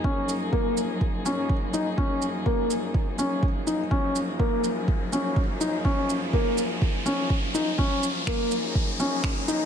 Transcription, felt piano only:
\new Staff \with { instrumentName = "Felt piano" } { \time 4/4 \key fis \major \tempo 4 = 124 cis'4 ais4 r8 cis'4 dis'8 | cis'4 ais4 r8 cis'4 dis'8 | cis'4 ais4 r8 cis'4 dis'8 | cis'4 ais4 r8 cis'4 dis'8 |
cis'4 ais4 r8 cis'4 dis'8 | }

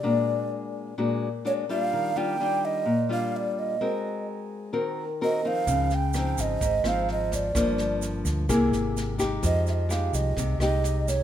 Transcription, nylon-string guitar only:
\new Staff \with { instrumentName = "Nylon-string guitar" } { \time 4/4 \key f \minor \tempo 4 = 128 << { <aes d' ges'>2 <aes d' ges'>8 r8 <aes d' ges'>8 <g d' f'>8~ | <g d' f'>8 <g d' f'>8 <g d' f'>4 r8 <g d' f'>4. | <c' ges' bes'>2 <c' ges' bes'>8 r8 <c' ges' bes'>8 <f c' ees'>8~ | <f c' ees'>8 r8 <f c' ees'>4 r8 <f c' ees'>4. |
<f bes d'>2 <bes e' gis'>4. <gis dis' g'>8~ | <gis dis' g'>4 <aes ees' g'>4. <aes ees' g'>4. | } \\ { bes,2 bes,2 | ees2 bes,2 | aes2 ees2 | des2 aes,2 |
g,2 c2 | f2 c2 | } >> }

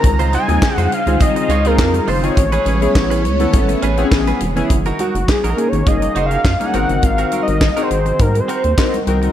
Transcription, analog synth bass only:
\new Staff \with { instrumentName = "Analog synth bass" } { \clef bass \time 4/4 \key ges \lydian \tempo 4 = 103 des,8. ees,16 r16 f,16 r16 des,16 r8 des,8 f,8 ges,,8 | a,,8 a,,8 a,,8 cis,8 gis,,8 a,,8 a,,8 e,,8 | ges,,8 r16 ges,,16 r16 bes,,16 r16 aes,,16 ges,,8 ges,,8 ges,16 r16 aes,,16 ges,,16 | aes,,8 r16 aes,,8 r16 aes,,8 aes,8 r16 ees,16 r8 c,8 | }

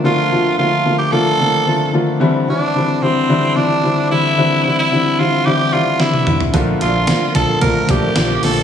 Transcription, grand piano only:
\new Staff \with { instrumentName = "Grand piano" } { \clef bass \time 4/4 \key c \mixolydian \tempo 4 = 111 <d f a bes f'>8 <d f a bes f'>8 <d f a bes f'>8 <d f a bes f'>8 <d f a bes f'>8 <d f a bes f'>8 <d f a bes f'>8 <d f a bes f'>8 | <d e g c' e'>8 <d e g c' e'>8 <d e g c' e'>8 <d e g c' e'>8 <d e g c' e'>8 <d e g c' e'>8 <d e g c' e'>8 <d e g c' e'>8 | <d e g c' e'>8 <d e g c' e'>8 <d e g c' e'>8 <d e g c' e'>8 <d e g c' e'>8 <d e g c' e'>8 <d e g c' e'>8 <d e g c' e'>8 | <d f a bes f'>8 <d f a bes f'>8 <d f a bes f'>8 <d f a bes f'>8 <d f a bes f'>8 <d f a bes g'>8 <d f a bes f'>8 <d f a bes f'>8 | }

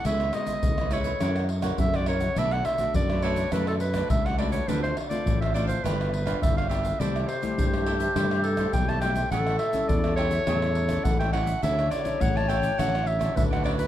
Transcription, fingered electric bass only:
\new Staff \with { instrumentName = "Fingered electric bass" } { \clef bass \time 4/4 \key d \major \tempo 4 = 104 cis,8 r8 cis,4 fis,4 fis,4 | b,,8 r8 fis,4 fis,4 cis,4 | d,8 r8 a,,4 g,,4 g,,4 | c,8 r8 g,4 g,4 b,,4 |
a,,8 r8 e,4 e,4 a,,4 | d,8 r8 a,,4 a,,4 d,4 | }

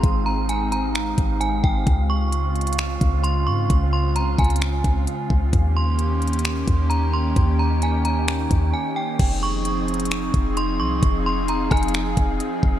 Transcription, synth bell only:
\new Staff \with { instrumentName = "Synth bell" } { \time 4/4 \key f \minor \tempo 4 = 131 r8 bes''8 aes''8 bes''4. aes''8 g''8 | r8 des'''2~ des'''8 c'''8 des'''8 | r8 c'''8 bes''8 aes''2~ aes''8 | r8 c'''2~ c'''8 bes''8 c'''8 |
r8 bes''8 aes''8 bes''4. aes''8 g''8 | r8 des'''2~ des'''8 c'''8 des'''8 | r8 c'''8 bes''8 aes''2~ aes''8 | }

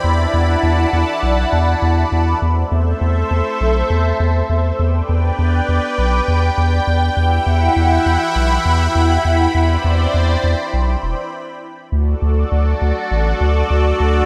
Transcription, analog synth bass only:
\new Staff \with { instrumentName = "Analog synth bass" } { \clef bass \time 4/4 \key d \mixolydian \tempo 4 = 101 e,8 e,8 e,8 e,8 b,,8 e,8 e,8 e,8 | e,8 e,8 e,8 e,8 b,,8 e,8 e,8 e,8 | e,8 e,8 e,8 e,8 b,,8 e,8 e,8 e,8 | e,8 e,8 e,8 e,8 b,,8 e,8 e,8 e,8 |
e,8 e,8 e,8 e,8 b,,8 e,,8 r4 | d,8 d,8 d,8 d,8 a,,8 d,8 d,8 d,8 | }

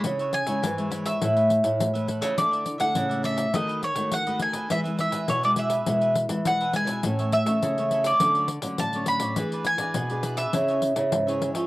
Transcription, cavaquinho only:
\new Staff \with { instrumentName = "Cavaquinho" } { \time 4/4 \key a \major \tempo 4 = 103 <e' b' cis'' e''>16 <b' cis'' e''>16 r16 <b' cis'' e''>16 <e' b' cis'' e''>16 <b' cis'' e''>16 <e' b' cis'' e''>16 <b' cis'' e''>16 <e' a' b' e''>16 <a' b' e''>16 r8. <a' b' e''>16 <e' a' b' e''>16 <a' b' e''>16 | <d' a' e''>16 <a' d'' e''>16 r16 <a' d'' e''>16 <d' a' d'' e''>16 <a' d'' e''>16 <d' a' d'' e''>16 <a' d'' e''>16 <dis' a' b' dis''>16 <a' b' dis''>16 r8. <a' b' dis''>16 <dis' a' b' dis''>16 <a' b' dis''>16 | <e' gis' b' e''>16 <gis' b' e''>16 r16 <gis' b' e''>16 <e' gis' b' e''>16 <gis' b' e''>16 <e' gis' b' e''>16 <gis' b' e''>16 <e' gis' b' e''>16 <gis' b' e''>16 r8. <gis' b' e''>16 <e' gis' b' e''>16 <gis' b' e''>16 | <e' a' cis'' e''>16 <a' cis'' e''>16 r16 <a' cis'' e''>16 <e' a' cis'' e''>16 <a' cis'' e''>16 <e' a' cis'' e''>16 <a' cis'' e''>16 <fis' a' cis'' d''>16 <a' cis'' d''>16 r8. <a' cis'' d''>16 <fis' a' cis'' d''>16 <a' cis'' d''>16 |
<e' gis' b' d''>16 <gis' b' d''>16 r16 <gis' b' d''>16 <e' gis' b' d''>16 <gis' b' d''>16 <e' gis' b' d''>16 <gis' b' d''>16 <e' gis' cis'' e''>16 <gis' cis'' e''>16 r8. <gis' cis'' e''>16 <e' gis' cis'' e''>16 <gis' cis'' e''>16 | }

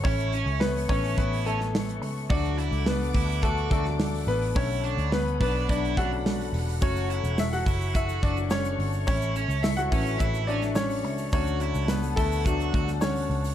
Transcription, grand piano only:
<<
  \new Staff \with { instrumentName = "Grand piano" } { \time 4/4 \key d \major \tempo 4 = 106 <cis' cis''>4 <b b'>8 cis''8 <b b'>8 <a a'>4 r8 | d''4 <b b'>4 <a a'>8 a'4 <b b'>8 | <cis' cis''>4 <b b'>8 <b b'>8 <d' d''>8 <fis' fis''>4 r8 | cis''4 <e' e''>16 <fis' fis''>8. <e' e''>8 <d' d''>8 <cis' cis''>8. r16 |
<cis' cis''>4 <e' e''>16 <fis' fis''>8. <e' e''>8 <d' d''>8 <cis' cis''>8. r16 | <cis' cis''>4 <b b'>8 <a a'>4. <cis' cis''>8. r16 | }
  \new Staff \with { instrumentName = "Grand piano" } { \time 4/4 \key d \major r4. <e a cis'>2~ <e a cis'>8 | <fis a d'>4. r4 <fis a d'>8 r4 | <d a>4. r4 <d a cis'>8 r4 | <fis a cis'>4. r2 r8 |
r4. <e a cis'>4. r4 | <fis a d'>4. r8 <fis a d'>8 r4. | }
>>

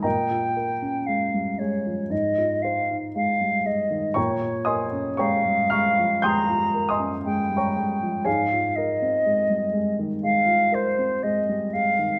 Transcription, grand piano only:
<<
  \new Staff \with { instrumentName = "Grand piano" } { \time 4/4 \key aes \major \tempo 4 = 59 <bes' ees'' g'' bes''>2.~ <bes' ees'' g'' bes''>8 r8 | <des'' g'' bes'' des'''>8 <ees'' aes'' c''' ees'''>8 <des'' g'' bes'' des'''>8 <f'' bes'' des''' f'''>8 \tuplet 3/2 { <g'' c''' ees''' g'''>4 <ees'' aes'' c''' ees'''>8~ <ees'' aes'' c''' ees'''>8 <des'' g'' bes'' des'''>4 } | <aes' des'' f'' aes''>2.~ <aes' des'' f'' aes''>8 r8 | }
  \new Staff \with { instrumentName = "Grand piano" } { \clef bass \time 4/4 \key aes \major bes,16 f'16 bes'16 des'16 aes16 g16 aes16 f16 aes,16 f'16 c''16 ees'16 aes16 g16 aes16 ees16 | bes,16 f'16 bes'16 des'16 aes16 g16 aes16 f16 aes16 f'16 bes'16 des'16 aes16 g16 aes16 f16 | aes,16 f'16 bes'16 c'16 aes16 g16 aes16 ees16 aes16 f'16 bes'16 c'16 aes16 g16 aes16 ees16 | }
>>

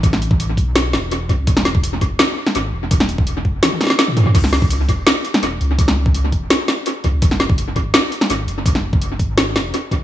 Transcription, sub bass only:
\new Staff \with { instrumentName = "Sub bass" } { \clef bass \time 4/4 \key fis \dorian \tempo 4 = 167 a,,4. b,,4 e,,4 cis,8 | e,,4. fis,,8 r4 gis,,8 e,,8~ | e,,4. fis,,8 r2 | cis,4. dis,,8 r4 e,,8 cis,8~ |
cis,4. dis,,8 r4. cis,16 cis,16 | fis,,4. gis,,8 r4 gis,,8 fis,,8~ | fis,,4. gis,,4 e,,8 r4 | }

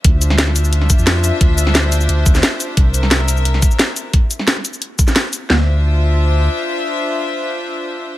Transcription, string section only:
\new Staff \with { instrumentName = "String section" } { \time 4/4 \key d \minor \tempo 4 = 176 << { <f' e''>1~ | <f' e''>1 | <bes' e''>1 | r1 |
<d' f' c'' e''>1~ | <d' f' c'' e''>1 | } \\ { <d' c''>1~ | <d' c''>1~ | <d' c''>1 | r1 |
r1 | r1 | } >> }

